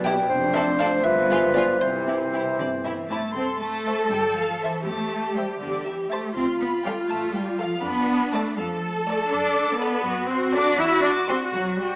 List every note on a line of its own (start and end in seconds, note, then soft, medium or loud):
0.00 0.17 B1 medium
0.00 0.17 B2 medium
0.00 0.26 G3 medium
0.00 0.27 B4 medium
0.04 0.13 B3 medium
0.04 0.14 B3 medium
0.04 0.13 E4 medium
0.04 0.15 G4 medium
0.04 0.14 G4 medium
0.04 0.51 G5 loud
0.04 0.54 G5 medium
0.29 0.92 F1 medium
0.29 0.93 F2 medium
0.29 1.83 F3 medium
0.29 1.01 C4 medium
0.29 1.02 D4 medium
0.29 1.06 C5 medium
0.54 0.62 C4 medium
0.54 0.63 D4 medium
0.54 0.64 A4 medium
0.54 0.78 E5 loud
0.54 0.61 E5 medium
0.79 0.88 C4 medium
0.79 0.88 D4 medium
0.79 0.88 A4 medium
0.79 1.03 F5 medium
0.79 0.86 F5 medium
1.04 1.68 G1 medium
1.04 1.68 G2 loud
1.04 1.81 B3 medium
1.04 1.81 F4 medium
1.04 1.82 B4 medium
1.04 1.52 E5 loud
1.04 1.55 E5 loud
1.30 1.38 B3 medium
1.30 1.39 F4 medium
1.30 1.39 G#4 medium
1.54 1.63 B3 medium
1.54 1.64 F4 medium
1.54 1.65 G#4 medium
1.54 1.79 D5 medium
1.54 1.62 D5 medium
1.80 2.45 C2 medium
1.80 2.45 C3 medium
1.80 3.10 E3 medium
1.80 3.09 C4 medium
1.80 3.07 E4 medium
1.80 3.09 C5 medium
1.80 2.54 C5 medium
1.80 2.57 C5 medium
2.06 2.14 C4 medium
2.06 2.16 E4 soft
2.06 2.16 G4 medium
2.32 2.40 C4 soft
2.32 2.42 E4 soft
2.32 2.42 G4 medium
2.58 3.22 G1 medium
2.58 2.67 C3 medium
2.58 2.67 D3 medium
2.58 2.67 D5 medium
2.83 2.92 B2 medium
2.83 3.09 E3 medium
2.83 2.91 C4 soft
2.83 2.93 E4 soft
2.83 2.93 G4 soft
2.83 2.93 E5 soft
3.10 3.18 A2 medium
3.10 3.35 A3 medium
3.10 3.18 C4 soft
3.10 3.19 E4 medium
3.10 3.18 G4 soft
3.10 3.35 A5 medium
3.34 3.95 C2 medium
3.34 3.44 C4 medium
3.34 4.82 A4 medium
3.34 3.60 C6 medium
3.59 4.10 A3 medium
3.59 4.09 A5 medium
3.87 4.05 C5 medium
3.87 4.05 E5 medium
4.11 4.71 G1 medium
4.11 4.36 G3 medium
4.11 4.37 G5 medium
4.35 4.61 F3 medium
4.35 4.61 F5 medium
4.60 4.85 E3 medium
4.60 4.80 C5 medium
4.60 4.69 E5 medium
4.60 4.80 E5 medium
4.86 5.46 E2 medium
4.86 5.36 A3 medium
4.86 6.36 G4 medium
4.86 5.35 A5 medium
5.35 5.60 G3 medium
5.35 5.55 C5 medium
5.35 5.55 E5 medium
5.35 5.45 G5 medium
5.60 6.21 E2 medium
5.60 5.85 D3 medium
5.60 5.85 D5 medium
5.85 6.11 E3 medium
5.85 5.94 E5 soft
6.10 6.35 A3 medium
6.10 6.30 C5 medium
6.10 6.29 E5 medium
6.10 6.19 A5 medium
6.35 6.95 D2 medium
6.35 6.43 C4 medium
6.35 7.81 F4 medium
6.35 6.60 C6 medium
6.60 6.68 B3 medium
6.60 6.84 B5 medium
6.85 6.93 G3 medium
6.85 7.05 A4 medium
6.85 7.05 F5 medium
6.85 6.93 G5 medium
7.09 7.69 A1 medium
7.09 7.34 A3 medium
7.09 7.17 A5 medium
7.34 7.59 G3 medium
7.34 7.42 G5 medium
7.58 7.84 F3 medium
7.58 7.78 A4 medium
7.58 7.84 F5 medium
7.58 7.78 F5 medium
7.83 8.43 F2 medium
7.83 8.32 B3 loud
7.83 8.56 D4 medium
7.83 8.33 B5 medium
8.33 8.58 A3 medium
8.33 8.53 A4 medium
8.33 8.52 D5 medium
8.33 8.41 A5 medium
8.57 9.17 F2 medium
8.57 8.83 F3 medium
8.57 10.02 A4 medium
8.57 8.65 F5 medium
9.07 9.30 A3 medium
9.07 9.26 A4 medium
9.07 9.26 D5 medium
9.07 9.31 A5 medium
9.31 9.90 F#2 medium
9.31 9.80 D4 medium
9.31 9.81 D6 medium
9.81 10.29 B3 loud
9.81 10.00 A4 medium
9.81 10.00 D5 medium
9.81 10.29 B5 medium
10.04 10.63 F#2 medium
10.04 11.96 F#4 medium
10.29 10.54 C4 medium
10.29 10.54 C6 medium
10.55 10.79 D4 loud
10.55 10.73 A4 medium
10.55 10.73 D5 medium
10.55 10.79 D6 medium
10.78 11.37 E2 medium
10.78 11.04 E4 loud
10.78 10.88 E6 medium
11.04 11.12 D4 medium
11.04 11.28 D6 medium
11.28 11.37 C4 medium
11.28 11.47 G4 medium
11.28 11.47 D5 medium
11.28 11.36 C6 medium
11.53 11.96 B1 medium
11.53 11.78 F#3 medium
11.53 11.61 F#5 medium
11.78 11.96 G3 medium
11.78 11.96 G5 medium